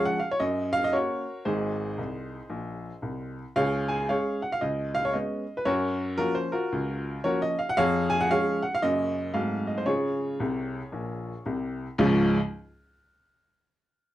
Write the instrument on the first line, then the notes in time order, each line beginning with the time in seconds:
upright piano
Already playing: F3 G#3 C#4
0.05 F#5
0.20 F5
0.31 C#5
0.40 F#2 D#5
0.73 F5
0.84 D#5
0.93 A#3 C#4 F#4 A#4 C#5
1.45 G#1 G#2 D#4 G#4 C5
1.98 C2
2.50 A#1
3.02 C2
3.56 C#2 G#4 C#5 F5
3.88 G#5
4.09 G#3 C#4 G#4 C#5 F5
4.42 F#5
4.52 F5
4.61 C#2 D#5
4.95 F5
5.05 C#5
5.13 G#3 B3 C#4 D#5
5.57 B4
5.65 F#2 F#4 A#4 C#5
6.18 F3 A#3 C#4 F4 F#4 A#4
6.35 C5
6.52 F4 F#4 A#4
6.72 C#2
7.24 F3 A#3 C#4 F#4 A#4 C#5
7.42 D#5
7.59 F5
7.69 F#5
7.77 F2 G#4 C#5 F5
8.10 G#5
8.21 F#5
8.31 F3 G#3 C#4 G#4 C#5 F5
8.63 F#5
8.75 F5
8.82 F#2 C#3 A#3 C#4 D#5
9.34 G#2 F#3 A3 C4 F5
9.67 D#5
9.78 C5
9.86 C#3 F4 G#4 C#5
10.40 C2 C3
10.92 A#1 A#2
11.46 C2 C3
11.98 C#2 G#2 F3 G#3 C#4 F4